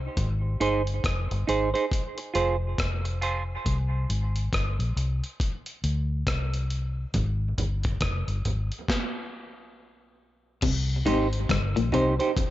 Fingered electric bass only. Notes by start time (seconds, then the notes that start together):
0.17 G#1
0.61 G1
1.04 F1
1.31 G1
1.48 G#1
2.35 F1
2.79 F1
3.66 C2
4.10 G#1
4.53 G1
4.79 A#1
4.96 C2
5.84 D2
6.27 C2
7.15 G#1
7.58 G1
8.01 F1
8.28 G1
8.45 G#1
10.63 C2
11.07 G#1
11.50 G1
11.77 A#1
11.94 C2